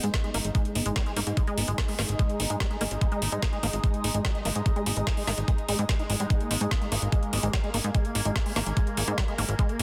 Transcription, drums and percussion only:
0.04 closed hi-hat
0.14 kick, snare, closed hi-hat
0.24 closed hi-hat
0.34 open hi-hat
0.45 closed hi-hat
0.55 kick, closed hi-hat
0.65 closed hi-hat
0.75 open hi-hat
0.86 closed hi-hat
0.96 kick, snare, closed hi-hat
1.06 closed hi-hat
1.16 open hi-hat
1.27 closed hi-hat
1.37 kick, closed hi-hat
1.47 closed hi-hat
1.58 open hi-hat
1.68 closed hi-hat
1.78 kick, snare, closed hi-hat
1.88 open hi-hat
1.99 snare, open hi-hat
2.09 closed hi-hat
2.19 kick, closed hi-hat
2.29 closed hi-hat
2.40 open hi-hat
2.50 closed hi-hat
2.60 kick, snare, closed hi-hat
2.71 closed hi-hat
2.81 open hi-hat
2.91 closed hi-hat
3.01 kick, closed hi-hat
3.12 closed hi-hat
3.22 open hi-hat
3.32 closed hi-hat
3.42 kick, snare, closed hi-hat
3.53 closed hi-hat
3.63 open hi-hat
3.73 closed hi-hat
3.84 kick, closed hi-hat
3.94 closed hi-hat
4.04 open hi-hat
4.14 closed hi-hat
4.25 kick, snare, closed hi-hat
4.35 closed hi-hat
4.45 open hi-hat
4.56 closed hi-hat
4.66 kick, closed hi-hat
4.76 closed hi-hat
4.86 open hi-hat
4.97 closed hi-hat
5.07 kick, snare, closed hi-hat
5.17 open hi-hat
5.27 snare, open hi-hat
5.38 closed hi-hat
5.48 kick, closed hi-hat
5.58 closed hi-hat
5.69 open hi-hat
5.79 closed hi-hat
5.89 kick, snare, closed hi-hat
5.99 closed hi-hat
6.10 open hi-hat
6.20 closed hi-hat
6.30 kick, closed hi-hat
6.40 closed hi-hat
6.51 open hi-hat
6.61 closed hi-hat
6.71 kick, snare, closed hi-hat
6.82 closed hi-hat
6.92 open hi-hat
7.02 closed hi-hat
7.12 kick, closed hi-hat
7.23 closed hi-hat
7.33 open hi-hat
7.43 closed hi-hat
7.53 kick, snare, closed hi-hat
7.64 closed hi-hat
7.74 open hi-hat
7.84 closed hi-hat
7.95 kick, closed hi-hat
8.05 closed hi-hat
8.15 open hi-hat
8.25 closed hi-hat
8.36 kick, snare, closed hi-hat
8.46 open hi-hat
8.56 snare, open hi-hat
8.66 closed hi-hat
8.77 kick, closed hi-hat
8.87 closed hi-hat
8.97 open hi-hat
9.08 closed hi-hat
9.18 kick, snare, closed hi-hat
9.28 closed hi-hat
9.38 open hi-hat
9.49 closed hi-hat
9.59 kick, closed hi-hat
9.69 closed hi-hat
9.79 open hi-hat

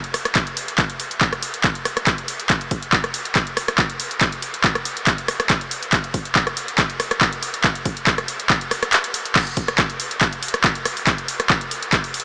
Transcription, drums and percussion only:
0.04 closed hi-hat
0.14 cross-stick, open hi-hat
0.25 cross-stick, closed hi-hat
0.35 kick, clap, closed hi-hat
0.47 closed hi-hat
0.57 open hi-hat
0.68 closed hi-hat
0.78 kick, clap, closed hi-hat
0.90 closed hi-hat
1.00 open hi-hat
1.11 closed hi-hat
1.21 kick, clap, closed hi-hat
1.33 cross-stick, closed hi-hat
1.43 open hi-hat
1.54 closed hi-hat
1.64 kick, clap, closed hi-hat
1.75 closed hi-hat
1.85 cross-stick, open hi-hat
1.97 cross-stick, closed hi-hat
2.07 kick, clap, closed hi-hat
2.18 closed hi-hat
2.28 open hi-hat
2.40 closed hi-hat
2.50 kick, clap, closed hi-hat
2.61 closed hi-hat
2.71 kick, open hi-hat
2.83 closed hi-hat
2.93 kick, clap, closed hi-hat
3.04 cross-stick, closed hi-hat
3.14 open hi-hat
3.25 closed hi-hat
3.35 kick, clap, closed hi-hat
3.47 closed hi-hat
3.57 cross-stick, open hi-hat
3.68 cross-stick, closed hi-hat
3.78 kick, clap, closed hi-hat
3.90 closed hi-hat
4.00 open hi-hat
4.11 closed hi-hat
4.21 kick, clap, closed hi-hat
4.32 closed hi-hat
4.42 open hi-hat
4.54 closed hi-hat
4.64 kick, clap, closed hi-hat
4.75 cross-stick, closed hi-hat
4.85 open hi-hat
4.97 closed hi-hat
5.07 kick, clap, closed hi-hat
5.18 closed hi-hat
5.28 cross-stick, open hi-hat
5.40 cross-stick, closed hi-hat
5.50 kick, clap, closed hi-hat
5.61 closed hi-hat
5.71 open hi-hat
5.83 closed hi-hat
5.93 kick, clap, closed hi-hat
6.04 closed hi-hat
6.14 kick, open hi-hat
6.25 closed hi-hat
6.35 kick, clap, closed hi-hat
6.47 cross-stick, closed hi-hat
6.57 open hi-hat
6.68 closed hi-hat
6.78 kick, clap, closed hi-hat
6.90 closed hi-hat
7.00 cross-stick, open hi-hat
7.11 cross-stick, closed hi-hat
7.21 kick, clap, closed hi-hat
7.33 closed hi-hat
7.43 open hi-hat
7.54 closed hi-hat
7.64 kick, clap, closed hi-hat
7.75 closed hi-hat
7.85 kick, open hi-hat
7.97 closed hi-hat
8.07 kick, clap, closed hi-hat
8.18 cross-stick, closed hi-hat
8.28 open hi-hat
8.40 closed hi-hat
8.50 kick, clap, closed hi-hat
8.61 closed hi-hat
8.71 cross-stick, open hi-hat
8.83 cross-stick, closed hi-hat
8.93 clap, closed hi-hat
9.04 closed hi-hat
9.14 open hi-hat
9.25 closed hi-hat
9.36 kick, clap, closed hi-hat, crash
9.47 closed hi-hat
9.57 kick, open hi-hat
9.68 cross-stick, closed hi-hat
9.78 kick, cross-stick, clap, closed hi-hat
9.90 closed hi-hat
10.00 open hi-hat
10.11 closed hi-hat
10.21 kick, clap, closed hi-hat
10.33 closed hi-hat
10.43 open hi-hat
10.48 closed hi-hat
10.54 cross-stick, closed hi-hat
10.64 kick, clap, closed hi-hat
10.75 closed hi-hat
10.85 cross-stick, open hi-hat
10.97 open hi-hat
11.07 kick, clap, closed hi-hat
11.18 closed hi-hat
11.28 open hi-hat
11.40 cross-stick, closed hi-hat
11.50 kick, cross-stick, clap, closed hi-hat
11.61 closed hi-hat
11.71 open hi-hat
11.83 closed hi-hat
11.93 kick, clap, closed hi-hat
12.04 open hi-hat
12.14 open hi-hat
12.20 closed hi-hat

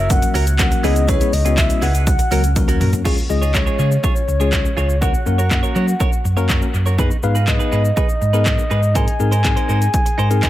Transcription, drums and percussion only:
0.10 kick, closed hi-hat, shaker
0.22 closed hi-hat, shaker
0.35 open hi-hat, shaker
0.47 closed hi-hat, shaker
0.59 kick, clap, closed hi-hat, shaker
0.71 closed hi-hat, shaker
0.84 open hi-hat, shaker
0.96 closed hi-hat, shaker
1.08 kick, closed hi-hat, shaker
1.21 closed hi-hat, shaker
1.33 open hi-hat, shaker
1.45 closed hi-hat, shaker
1.58 kick, clap, closed hi-hat, shaker
1.70 closed hi-hat, shaker
1.82 open hi-hat, shaker
1.95 closed hi-hat, shaker
2.07 kick, closed hi-hat, shaker
2.19 closed hi-hat, shaker
2.31 open hi-hat, shaker
2.44 closed hi-hat, shaker
2.56 kick, closed hi-hat, high tom, shaker
2.68 closed hi-hat, shaker
2.81 mid tom, open hi-hat, shaker
2.93 closed hi-hat, floor tom, shaker
3.05 kick, crash, shaker
3.18 shaker
3.30 shaker
3.42 shaker
3.54 kick, clap, shaker
3.67 shaker
3.79 shaker
3.92 shaker
4.04 kick, shaker
4.16 shaker
4.29 shaker
4.40 shaker
4.53 kick, clap, shaker
4.65 shaker
4.78 shaker
4.90 shaker
5.02 kick, shaker
5.14 shaker
5.26 shaker
5.39 shaker
5.51 kick, clap, shaker
5.64 shaker
5.76 shaker
5.88 shaker
6.00 kick, shaker
6.13 shaker
6.25 shaker
6.37 shaker
6.50 kick, clap, shaker
6.62 shaker
6.74 shaker
6.86 shaker
6.99 kick, shaker
7.11 shaker
7.23 shaker
7.35 shaker
7.48 kick, clap, shaker
7.60 shaker
7.72 shaker
7.85 shaker
7.97 kick, shaker
8.09 shaker
8.22 shaker
8.34 shaker
8.46 kick, clap, shaker
8.59 shaker
8.71 shaker
8.83 shaker
8.95 kick, closed hi-hat, shaker
9.08 closed hi-hat, shaker
9.20 shaker
9.32 closed hi-hat, shaker
9.45 kick, clap, closed hi-hat, shaker
9.57 closed hi-hat, shaker
9.69 shaker
9.82 closed hi-hat, shaker
9.94 kick, closed hi-hat, shaker
10.06 closed hi-hat, shaker
10.19 shaker
10.31 closed hi-hat, shaker
10.43 kick, clap, closed hi-hat, shaker

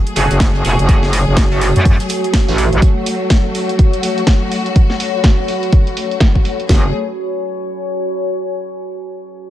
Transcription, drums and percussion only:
0.07 closed hi-hat
0.16 snare, closed hi-hat, open hi-hat
0.30 snare, closed hi-hat
0.40 kick, snare, closed hi-hat
0.55 snare
0.65 closed hi-hat, open hi-hat
0.79 closed hi-hat
0.88 kick, closed hi-hat
1.03 snare
1.13 closed hi-hat, open hi-hat
1.37 kick, snare, closed hi-hat
1.61 closed hi-hat, open hi-hat
1.76 closed hi-hat
1.85 kick, closed hi-hat, open hi-hat
2.00 snare, closed hi-hat
2.09 closed hi-hat, open hi-hat
2.24 closed hi-hat
2.34 kick, snare, closed hi-hat
2.58 closed hi-hat, open hi-hat
2.73 closed hi-hat
2.82 kick, closed hi-hat
3.06 open hi-hat
3.30 kick, snare, closed hi-hat
3.55 open hi-hat
3.69 closed hi-hat
3.79 kick, closed hi-hat
3.93 closed hi-hat
4.03 open hi-hat
4.18 closed hi-hat
4.27 kick, snare, closed hi-hat
4.52 open hi-hat
4.66 closed hi-hat
4.76 kick, closed hi-hat
4.90 snare
5.00 open hi-hat
5.24 kick, snare, closed hi-hat
5.48 open hi-hat
5.63 closed hi-hat
5.73 kick, closed hi-hat
5.87 closed hi-hat
5.97 open hi-hat
6.11 closed hi-hat
6.20 kick, snare, closed hi-hat
6.35 kick
6.45 open hi-hat
6.60 closed hi-hat
6.69 kick, snare

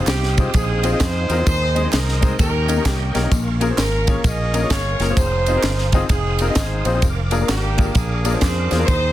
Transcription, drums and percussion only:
0.07 snare, clap, ride, tambourine
0.23 snare
0.38 kick, ride, tambourine
0.54 kick, ride, tambourine
0.84 ride, tambourine
1.00 kick, snare, clap, ride, tambourine
1.30 ride, tambourine
1.47 kick, ride, tambourine
1.76 ride, tambourine
1.93 snare, clap, ride, tambourine
2.09 snare
2.22 kick, ride, tambourine
2.39 kick, ride, tambourine
2.68 ride, tambourine
2.85 kick, snare, clap, ride, tambourine
3.15 snare, ride, tambourine
3.32 kick, ride, tambourine
3.61 ride, tambourine
3.78 snare, clap, ride, tambourine
4.07 kick, ride, tambourine
4.24 kick, ride, tambourine
4.54 ride, tambourine
4.70 kick, snare, clap, ride, tambourine
5.00 snare, ride, tambourine
5.17 kick, ride, tambourine
5.46 ride, tambourine
5.63 snare, clap, ride, tambourine
5.78 snare
5.92 kick, ride, tambourine
6.09 kick, ride, tambourine
6.39 ride, tambourine
6.55 kick, snare, clap, ride, tambourine
6.85 ride, tambourine
7.02 kick, ride, tambourine
7.31 ride, tambourine
7.49 snare, clap, ride, tambourine
7.78 kick, ride, tambourine
7.95 kick, ride, tambourine
8.25 ride, tambourine
8.41 kick, snare, clap, ride, tambourine
8.71 snare, ride, tambourine
8.88 kick, ride, tambourine

